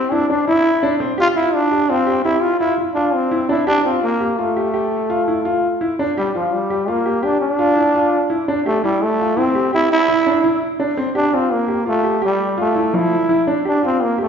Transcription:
0.00 0.13 C4 medium
0.12 0.29 D4 medium
0.12 0.22 E4 medium
0.29 0.46 D4 medium
0.29 0.40 D4 medium
0.47 0.68 E4 medium
0.47 0.97 E4 medium
0.83 0.93 D4 medium
1.00 1.11 C4 medium
1.18 1.28 F4 loud
1.18 1.28 G4 medium
1.35 1.56 E4 medium
1.35 1.56 F4 medium
1.54 1.91 D4 medium
1.71 1.82 G4 medium
1.89 2.24 C4 medium
1.89 2.00 F4 medium
2.07 2.17 G4 medium
2.25 2.43 E4 loud
2.25 2.46 G4 medium
2.42 2.59 F4 medium
2.59 2.77 E4 medium
2.59 2.71 F4 medium
2.78 2.88 E4 medium
2.94 3.16 D4 medium
2.94 3.17 F4 medium
3.14 3.49 C4 medium
3.31 3.42 E4 medium
3.49 3.60 D4 medium
3.49 3.67 E4 medium
3.67 3.84 D4 loud
3.67 3.77 G4 medium
3.85 4.02 C4 medium
3.85 4.06 F4 medium
4.03 4.40 A#3 medium
4.21 4.31 G4 medium
4.38 5.81 A3 medium
4.38 4.49 F4 medium
4.57 4.67 G4 medium
4.74 4.95 G4 medium
5.10 5.20 F4 medium
5.28 5.38 E4 medium
5.45 5.66 F4 medium
5.81 5.91 E4 medium
5.99 6.09 D4 medium
6.17 6.34 G3 medium
6.17 6.28 G4 medium
6.35 6.55 F3 medium
6.35 6.55 F4 medium
6.53 6.91 G3 medium
6.70 6.81 G4 medium
6.88 7.25 A#3 medium
6.88 6.98 F4 medium
7.06 7.16 G4 medium
7.23 7.40 D4 medium
7.23 7.44 G4 medium
7.41 8.44 D4 loud
7.59 7.69 F4 medium
7.77 7.87 E4 medium
7.95 8.15 F4 medium
8.30 8.40 E4 medium
8.48 8.58 D4 medium
8.66 8.83 A3 medium
8.66 8.76 G4 medium
8.84 9.04 G3 medium
8.84 9.04 E4 medium
9.03 9.39 A3 medium
9.19 9.30 F4 medium
9.37 9.73 C4 medium
9.37 9.47 E4 medium
9.55 9.65 G4 medium
9.73 9.90 E4 loud
9.73 9.93 G4 medium
9.92 10.67 E4 loud
10.08 10.19 E4 medium
10.26 10.37 D4 medium
10.44 10.65 E4 medium
10.80 10.90 D4 medium
10.97 11.08 C4 medium
11.15 11.36 D4 medium
11.15 11.25 G4 medium
11.33 11.54 C4 medium
11.33 11.54 F4 medium
11.52 11.87 A#3 medium
11.68 11.78 G4 medium
11.86 12.20 A3 medium
11.86 11.96 F4 medium
12.04 12.14 G4 medium
12.22 12.57 G3 medium
12.22 12.42 G4 medium
12.58 12.97 A3 medium
12.58 12.68 F4 medium
12.76 12.86 E4 medium
12.94 13.14 F3 medium
12.94 13.48 E4 medium
13.29 13.39 E4 medium
13.47 13.57 D4 medium
13.65 13.83 D4 medium
13.65 13.75 G4 medium
13.83 14.04 C4 medium
13.83 14.03 F4 medium
14.03 14.19 A#3 medium
14.18 14.28 A3 medium
14.18 14.28 G4 medium

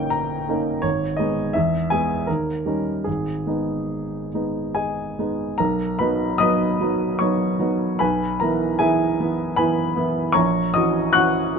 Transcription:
0.00 0.86 G1 medium
0.00 0.49 A#3 soft
0.00 0.49 C#4 soft
0.00 0.50 D#4 soft
0.00 0.12 G5 medium
0.00 0.10 A#5 medium
0.10 0.82 A#5 medium
0.49 0.80 A#3 soft
0.49 0.80 C#4 soft
0.49 0.81 D#4 soft
0.82 1.18 G#1 medium
0.82 1.18 C#5 medium
1.17 1.51 G#3 soft
1.17 1.52 B3 soft
1.17 1.52 D#4 soft
1.17 1.54 D#5 medium
1.53 1.90 E2 medium
1.53 1.90 E5 medium
1.90 2.24 G#3 soft
1.90 2.25 B3 soft
1.90 2.25 G#4 soft
1.90 2.27 G#5 medium
2.27 2.65 D#2 soft
2.27 3.06 A#4 medium
2.66 3.02 G3 soft
2.66 3.02 C#4 soft
2.66 3.03 D#4 soft
3.04 3.46 G#1 soft
3.04 4.74 G#4 medium
3.47 4.29 G#3 soft
3.47 4.29 B3 soft
3.47 4.29 D#4 soft
4.34 5.15 G#3 soft
4.34 5.15 B3 soft
4.34 5.16 D#4 soft
4.75 5.55 G#4 soft
4.75 5.55 D#5 soft
4.75 5.58 G#5 medium
5.19 5.56 G#3 soft
5.19 5.56 B3 soft
5.19 5.56 D#4 soft
5.58 5.99 B1 medium
5.58 5.97 A#4 medium
5.58 5.99 A#5 medium
5.99 6.36 F#3 soft
5.99 6.36 B3 soft
5.99 6.37 D#4 soft
5.99 6.37 B4 medium
5.99 6.38 B5 medium
6.38 6.76 F#3 soft
6.38 6.76 B3 soft
6.38 6.76 D#4 soft
6.38 7.16 D#5 medium
6.38 7.15 B5 medium
6.38 7.19 D#6 medium
6.81 7.16 F#3 soft
6.81 7.16 B3 soft
6.81 7.17 D#4 soft
7.19 7.56 F#3 soft
7.19 7.57 B3 soft
7.19 7.57 D#4 soft
7.19 7.96 C#5 medium
7.19 8.00 C#6 medium
7.59 7.96 F#3 soft
7.59 7.96 B3 soft
7.59 7.96 D#4 soft
7.99 8.39 B1 medium
7.99 8.37 B4 medium
7.99 8.37 G#5 medium
7.99 8.40 B5 medium
8.40 8.76 E3 soft
8.40 8.77 B3 soft
8.40 8.77 E4 soft
8.40 8.77 A#4 medium
8.40 8.80 A#5 medium
8.79 9.16 E3 medium
8.79 9.16 B3 soft
8.79 9.16 E4 medium
8.79 9.55 G#4 medium
8.79 9.55 E5 medium
8.79 9.56 G#5 medium
9.20 9.55 E3 soft
9.20 9.55 B3 soft
9.20 9.55 E4 medium
9.56 9.93 E3 soft
9.56 9.94 B3 soft
9.56 9.94 E4 medium
9.56 10.32 B4 medium
9.56 10.32 G#5 medium
9.56 10.35 B5 medium
9.96 10.32 E3 soft
9.96 10.32 B3 medium
9.96 10.32 E4 medium
10.32 10.74 A#1 medium
10.32 10.72 C#5 medium
10.32 10.72 A#5 medium
10.32 10.74 C#6 medium
10.74 11.11 E3 soft
10.74 11.12 C#4 soft
10.74 11.12 F#4 medium
10.74 11.12 D#5 medium
10.74 11.14 D#6 medium
11.13 11.51 E3 medium
11.13 11.51 C#4 medium
11.13 11.52 F#4 medium
11.13 11.59 F#5 medium
11.13 11.59 C#6 medium
11.13 11.59 F#6 loud
11.56 11.59 E3 soft
11.56 11.59 C#4 medium

